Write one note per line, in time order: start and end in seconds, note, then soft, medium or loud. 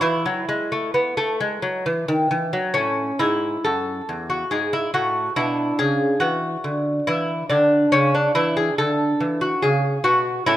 0.01 0.24 E3 medium
0.01 1.81 E4 medium
0.26 0.47 F#3 medium
0.49 0.70 G#3 medium
0.72 0.94 A3 medium
0.94 1.16 B3 medium
1.17 1.39 A3 medium
1.40 1.62 G#3 medium
1.62 1.84 F#3 medium
1.86 2.07 E3 medium
2.08 2.30 D#3 medium
2.31 2.52 E3 medium
2.53 2.74 F#3 medium
2.74 3.11 A2 medium
2.74 3.18 C#4 medium
3.19 3.56 G#2 medium
3.19 3.63 E4 medium
3.64 4.00 F#2 medium
3.64 4.28 A4 medium
4.09 4.43 E2 medium
4.30 4.52 F#4 medium
4.51 4.86 G#2 medium
4.51 4.73 G#4 medium
4.73 4.93 E4 medium
4.94 5.29 A2 medium
4.94 5.35 F#4 medium
5.36 5.71 B2 medium
5.36 7.48 D4 soft
5.36 5.77 E4 medium
5.79 6.13 C#3 medium
5.79 6.20 G#4 medium
6.20 6.56 E3 soft
6.20 7.03 F#4 medium
6.64 6.99 D3 soft
7.07 7.42 E3 medium
7.07 7.48 E4 medium
7.50 7.84 D3 medium
7.50 7.91 D4 medium
7.92 8.27 C#3 medium
7.92 8.13 C#4 medium
8.15 8.35 D4 medium
8.35 8.69 E3 medium
8.35 8.56 E4 medium
8.57 8.77 G#4 medium
8.78 9.12 D3 medium
8.78 9.39 A4 medium
9.20 9.54 E3 soft
9.41 9.62 F#4 medium
9.62 9.97 C#3 medium
9.62 10.03 G#4 medium
10.04 10.38 B2 medium
10.04 10.44 F#4 medium
10.46 10.57 A2 medium
10.46 10.57 C#4 soft
10.46 10.57 E4 medium